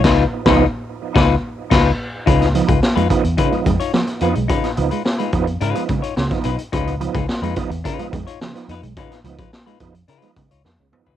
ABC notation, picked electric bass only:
X:1
M:4/4
L:1/16
Q:1/4=107
K:Dbmix
V:1 name="Picked electric bass" clef=bass
D,,2 z D,,2 z3 D,,2 z2 D,,2 z2 | D,,3 D,, z F,, z _F,, z2 =F,, z3 F,, C,, | z2 D,, z3 F,,2 A,, z D, z D,, z C,, z | D,,3 D,, z F,, z _F,, z2 =F,, z3 F,, C,, |
z2 D,, z3 F,,2 D, z D, D,, F,, D,, z D,, |]